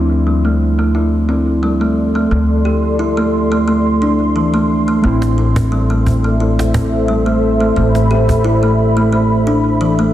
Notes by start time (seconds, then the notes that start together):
Already playing: D2 F3 C4 E4 A4 D5 C6
0.27 G3
0.45 A3
0.79 A3
0.95 E4
1.29 C4
1.63 G3
1.81 A3
2.15 A3
2.31 D2 A3
2.65 G4
2.99 E4
3.17 A3
3.52 A3
3.68 A3
4.02 D4
4.36 E3
4.54 A3
4.88 A3
5.02 A1 A3 C4 A4 C5 E5
5.06 E4
5.22 cajon slap
5.38 C4
5.56 cajon bass
5.72 G3
5.90 A3
6.06 cajon bass
6.24 A3
6.40 E4
6.59 cajon slap
6.74 C4, cajon bass
7.08 G3
7.26 A3
7.60 A3
7.76 A1 A3 B5
7.95 cajon slap
8.11 G4
8.29 cajon bass
8.44 E4
8.63 A3
8.97 A3
9.13 A3
9.47 D4
9.81 E3
9.99 A3